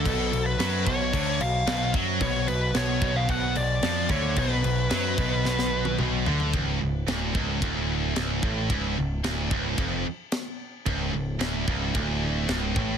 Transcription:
<<
  \new Staff \with { instrumentName = "Lead electric guitar" } { \time 4/4 \tempo 4 = 111 a'8. b'8. cis''4 eis''4 r8 | cis''8 b'8 cis''8. eis''16 fis''8 d''4 cis''8 | b'2. r4 | r1 |
r1 | r1 | }
  \new Staff \with { instrumentName = "Distorted electric guitar" } { \clef bass \time 4/4 b,8 b,8 fis8 b,8 d8 b,8 b,8 fis8 | b,8 b,8 b,8 b,8 b,8 b,8 eis8 d8 | b,8 b,8 fis8 b,8 b,4 b,8 d8 | cis,8 cis,8 d,8 cis,8 d,4 cis,8 a,8 |
cis,8 cis,8 d,8 cis,8 eis,8 r4. | cis,8 cis,8 d,8 cis,8 d,4 cis,8 a,8 | }
  \new Staff \with { instrumentName = "Distorted electric guitar" } { \clef bass \time 4/4 b,8 b,8 fis8 b,8 d8 b,8 b,8 fis8 | b,8 b,8 b,8 b,8 b,8 b,8 eis8 d8 | b,8 b,8 fis8 b,8 b,4 b,8 d8 | cis,8 cis,8 d,8 cis,8 d,4 cis,8 a,8 |
cis,8 cis,8 d,8 cis,8 eis,8 r4. | cis,8 cis,8 d,8 cis,8 d,4 cis,8 a,8 | }
  \new Staff \with { instrumentName = "Distorted electric guitar" } { \clef bass \time 4/4 b,8 b,8 fis8 b,8 d8 b,8 b,8 fis8 | b,8 b,8 b,8 b,8 b,8 b,8 eis8 d8 | b,8 b,8 fis8 b,8 b,4 b,8 d8 | r1 |
r1 | r1 | }
  \new Staff \with { instrumentName = "Picked electric bass" } { \clef bass \time 4/4 b,,8 b,,8 fis,8 b,,8 d,8 b,,8 b,,8 fis,8 | b,,8 b,,8 b,,8 b,,8 b,,8 b,,8 eis,8 d,8 | b,,8 b,,8 fis,8 b,,8 b,,4 b,,8 d,8 | cis,,8 cis,,8 d,,8 cis,,8 d,,4 cis,,8 a,,8 |
cis,,8 cis,,8 d,,8 cis,,8 eis,,8 r4. | cis,,8 cis,,8 d,,8 cis,,8 d,,4 cis,,8 a,,8 | }
  \new DrumStaff \with { instrumentName = "Drums" } \drummode { \time 4/4 <cymc bd>8 cymc8 <cymc sn>8 <cymc bd>8 <cymc bd>8 cymc8 <cymc sn>8 <cymc bd>8 | <cymc bd>8 cymc8 <cymc sn>8 <cymc bd>8 <cymc bd>8 cymc8 <cymc sn>8 <cymc bd>8 | <cymc bd>8 cymc8 <cymc sn>8 <cymc bd>8 sn16 sn8 tommh16 toml8 tomfh16 tomfh16 | <bd rb>4 <rb sn>8 bd8 <bd rb>4 <rb sn>8 bd8 |
<bd rb>4 <rb sn>8 bd8 <bd rb>4 <rb sn>4 | <bd rb>4 <rb sn>8 bd8 <bd rb>4 <rb sn>8 bd8 | }
>>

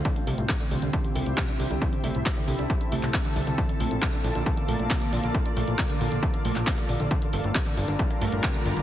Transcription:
<<
  \new Staff \with { instrumentName = "Ambient pad" } { \time 4/4 \key bes \lydian \tempo 4 = 136 << { g'1 | a'1 | <f' d''>1~ | <f' d''>1 |
<d' bes'>1 | } \\ { <c c' e'>1~ | <c c' e'>1 | bes1~ | bes1 |
<g f'>1 | } >> }
  \new Staff \with { instrumentName = "Synth pluck" } { \clef bass \time 4/4 \key bes \lydian d16 d16 a16 a,16 c16 d16 d16 d16 d16 d16 a16 a,16 c16 d16 d16 d16 | d16 d16 a16 a,16 c16 d16 d16 d16 d16 d16 a16 a,16 c16 d16 d16 d16 | d16 d16 a16 a,16 c16 d16 d16 d16 d16 d16 a16 a,16 c16 d16 d16 d16 | d16 d16 a16 a,16 c16 d16 d16 d16 d16 d16 a16 a,16 c16 d16 d16 d16 |
d16 d16 a16 a,16 c16 d16 d16 d16 d16 d16 a16 a,16 c16 d16 d16 d16 | }
  \new Staff \with { instrumentName = "Analog synth bass" } { \clef bass \time 4/4 \key bes \lydian r8 c,16 c,16 r8 c,16 c,16 r8 c,16 c,16 r8 c,16 c,16 | r8 c,16 c,16 r8 c,16 c,16 r8 c,16 c,16 r8 c,16 c,16 | r8 bes,,16 bes,,16 r8 bes,,16 bes,,16 r8 bes,,16 bes,,16 r8 bes,,16 bes,,16 | r8 bes,,16 bes,,16 r8 bes,,16 bes,,16 r8 bes,,16 bes,,16 r8 bes,,16 bes,,16 |
r8 g,,16 g,,16 r8 g,,16 g,,16 r8 g,,16 g,,16 r8 g,,16 g,,16 | }
  \new DrumStaff \with { instrumentName = "Drums" } \drummode { \time 4/4 <hh bd>16 hh16 hho16 hh16 <hc hh bd>16 hh16 hho16 hh16 <hh bd>16 hh16 hho16 hh16 <hc hh bd>16 hh16 hho16 hh16 | <hh bd>16 hh16 hho16 hh16 <hc hh bd>16 hh16 hho16 hh16 <hh bd>16 hh16 hho16 <hc hh>16 <hc hh bd>16 hh16 hho16 hh16 | <hh bd>16 hh16 hho16 hh16 <hc hh bd>16 hh16 hho16 hh16 <hh bd>16 hh16 hho16 hh16 <hc hh bd>16 hh16 hho16 hh16 | <hh bd>16 hh16 hho16 hh16 <hc hh bd>16 hh16 hho16 hh16 <hh bd>16 hh16 hho16 <hc hh>16 <hc hh bd>16 hh16 hho16 hh16 |
<hh bd>16 hh16 hho16 hh16 <hc hh bd>16 hh16 hho16 hh16 <hh bd>16 hh16 hho16 hh16 <hc hh bd>16 hh16 hho16 hh16 | }
>>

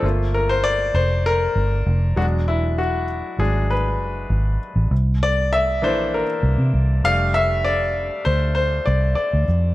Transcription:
<<
  \new Staff \with { instrumentName = "Grand piano" } { \time 4/4 \key g \dorian \tempo 4 = 98 r8 bes'16 c''16 d''8 c''8 bes'4. fis'8 | e'8 fis'4 gis'8 b'4. r8 | r8 d''8 e''8 c''8 bes'8 r4 f''8 | e''8 d''4 c''8 c''8 d''8 d''4 | }
  \new Staff \with { instrumentName = "Grand piano" } { \time 4/4 \key g \dorian <a bes f'>4. r2 <fis gis d'>8~ | <fis gis d'>4 r8 <fis gis d'>8 r2 | r4. <e bes d'>8 r4. <g a d'>8~ | <g a d'>2.~ <g a d'>8 r8 | }
  \new Staff \with { instrumentName = "Fingered electric bass" } { \clef bass \time 4/4 \key g \dorian g,,4. f,,4 g,,8 f,,8 e,,8~ | e,,4. gis,,4 fis,,8 gis,,8 r16 a,,16 | c,4. bes,,8. r16 c,16 c16 c,8 f,,8~ | f,,4. d,4 c,8 r16 d,16 f,8 | }
>>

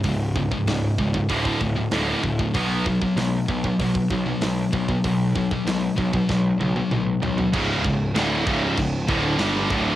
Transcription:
<<
  \new Staff \with { instrumentName = "Distorted electric guitar" } { \clef bass \time 4/4 \key b \mixolydian \tempo 4 = 96 <cis, gis,>8 <cis, gis,>16 <cis, gis,>16 <cis, gis,>8 <cis, gis,>16 <cis, gis,>16 <d, a, d>8 <d, a,>16 <d, a,>16 <d, a, d>8 <d, a,>16 <d, a,>16 | <b, fis b>8 <b, fis>16 <b, fis>16 <b, fis>8 <b, fis>16 <b, fis>16 <b, fis>8 <b, fis>16 <b, fis>16 <b, fis>8 <b, fis>16 <b, fis>16 | <b, fis>8 <b, fis>16 <b, fis>16 <b, fis>8 <b, fis>16 <b, fis>16 <b, fis>8 <b, fis>16 <b, fis>16 <b, fis>8 <b, fis>16 <b, fis>16 | <cis, gis, cis>8 <cis, gis,>8 <d, a, d>8 <cis, gis, cis>8 <cis, gis,>8 <d, a, d>8 <g, d g>8 <d, a, d>8 | }
  \new Staff \with { instrumentName = "Distorted electric guitar" } { \clef bass \time 4/4 \key b \mixolydian <cis, gis,>8 <cis, gis,>16 <cis, gis,>16 <cis, gis,>8 <cis, gis,>16 <cis, gis,>16 <d, a, d>8 <d, a,>16 <d, a,>16 <d, a, d>8 <d, a,>16 <d, a,>16 | <b, fis b>8 <b, fis>16 <b, fis>16 <b, fis>8 <b, fis>16 <b, fis>16 <b, fis>8 <b, fis>16 <b, fis>16 <b, fis>8 <b, fis>16 <b, fis>16 | <b, fis>8 <b, fis>16 <b, fis>16 <b, fis>8 <b, fis>16 <b, fis>16 <b, fis>8 <b, fis>16 <b, fis>16 <b, fis>8 <b, fis>16 <b, fis>16 | <cis, gis, cis>8 <cis, gis,>8 <d, a, d>8 <cis, gis, cis>8 <cis, gis,>8 <d, a, d>8 <g, d g>8 <d, a, d>8 | }
  \new Staff \with { instrumentName = "Distorted electric guitar" } { \clef bass \time 4/4 \key b \mixolydian r1 | r1 | r1 | <cis, gis, cis>8 <cis, gis,>8 <d, a, d>8 <cis, gis, cis>8 <cis, gis,>8 <d, a, d>8 <g, d g>8 <d, a, d>8 | }
  \new Staff \with { instrumentName = "Picked electric bass" } { \clef bass \time 4/4 \key b \mixolydian cis,,4 cis,,8 cis,,8 d,,8 d,,8 d,,8 d,,8 | b,,4 b,,8 b,,8 b,,8 b,,8 b,,8 b,,8 | b,,4 b,,8 b,,8 b,,8 b,,8 b,,8 b,,8 | cis,,8 cis,,8 d,,8 cis,,8 cis,,8 d,,8 g,,8 d,,8 | }
  \new DrumStaff \with { instrumentName = "Drums" } \drummode { \time 4/4 <hho bd>8 bd16 bd16 <hho sn>8 bd16 bd16 <hho bd>16 bd16 bd8 <hho sn>8 bd16 bd16 | <hho bd>8 bd16 bd16 <hho sn>8 bd16 bd16 <hho bd>16 bd16 bd8 <hho sn>8 bd16 bd16 | <hho bd>8 bd16 bd16 <hho sn>8 bd16 bd16 <bd sn>8 tommh16 tommh16 toml8 tomfh16 tomfh16 | <cymc bd>8 <cymc bd>8 <cymc sn>8 <cymc bd>8 <cymc bd>8 <cymc bd>8 <cymc sn>8 <cymc bd>8 | }
>>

